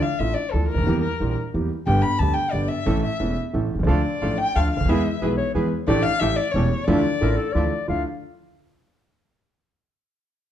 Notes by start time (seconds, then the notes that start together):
0.03 F5
0.19 A1 A2 E3 A3 D4 F4 E5
0.34 D5
0.51 D2 D3 E3 A3 D4 F4 A4
0.68 A#4
0.75 C#2 D2
0.79 D2 D#2
0.87 E2 E3 G3 A#3 G4
1.01 A#4
1.20 A#1 A#2 E3 G3 A#3 G4
1.54 E2 E3 G3 A#3 G4
1.86 G1 G2 D3 G3 B3 G4 G5
2.02 B5
2.19 D2 D3 G3 B3 G4 A5
2.34 G5
2.51 G1 G2 D3 G3 B3 G4 D5
2.68 E5
2.86 A1 A2 E3 A3 C#4 A4
3.03 E5
3.20 E1 E2 E3 A3 C#4 A4
3.53 A1 A2 E3 A3 C#4 A4
3.75 B1
3.79 C2
3.83 C#2 D2 D3 F3 A3 D4 F4 A4
3.87 D2 D5
4.21 A1 A2 F3 A3 D4 F4 A4
4.38 G5
4.55 D2 D3 F3 A3 D4 F4 A4 F5
4.73 C#2 F5
4.77 C#2 D2
4.85 D#2 E2 E3 B3 E4 G#4
4.89 E2 G#3 B3 G#4 E5
5.21 B1 B2 E3 G#3 B3 E4 G#4 B4
5.37 C#5
5.54 E2 E3 G#3 B3 E4 G#4 B4
5.87 A1 A2 E3 A3 D4 G4 D5
6.03 F5
6.19 A1 A2 E3 A3 C#4 G4 E5
6.36 D5
6.51 E1 E2 E3 A3 C#4 G4 C#5
6.84 D2 D3 E3 F3 A3 D4 E4 F4 D5
6.88 D2
7.21 A1 A2 E3 F3 A3 D4 E4 F4 A#4
7.36 A4
7.53 D2 D3 E3 F3 A3 D4 E4 F4 D5
7.88 D2 D4 E4 F4 F5